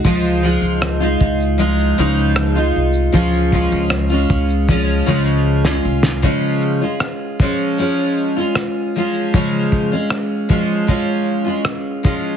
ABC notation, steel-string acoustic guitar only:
X:1
M:4/4
L:1/16
Q:1/4=78
K:Db
V:1 name="Steel-string acoustic guitar"
[F,A,EF]2 [F,A,EF]3 [A,EF]3 [F,A,EF]2 [D,F,A,EF]3 [A,EF]3 | [F,A,DF]2 [F,A,DF]3 [A,DF]3 [F,A,DF]2 [D,F,A,DF]3 [A,DF]3 | [D,F,A,DF]3 [A,DF]3 [F,A,DF]2 [F,A,DF]3 [A,DF]3 [F,A,DF]2 | [D,F,A,DF]3 [A,DF]3 [F,A,DF]2 [F,A,DF]3 [A,DF]3 [F,A,DF]2 |]